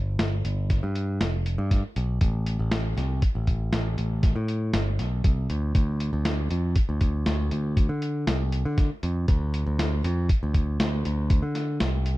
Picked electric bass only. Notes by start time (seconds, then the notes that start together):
Already playing: G1
0.20 G1
0.45 G1
0.83 G2
1.21 F1
1.58 G2
1.96 B1
2.21 A1
2.59 A1
2.97 C2
3.35 A1
3.73 A1
3.97 A1
4.36 A2
4.74 G1
4.99 B1
5.24 C2
5.50 D2
5.75 D2
6.13 D2
6.51 F2
6.89 D2
7.27 D2
7.52 D2
7.89 D3
8.27 C2
8.65 D3
9.03 F2
9.28 D2
9.66 D2
10.04 F2
10.43 D2
10.80 D2
11.06 D2
11.42 D3
11.81 C2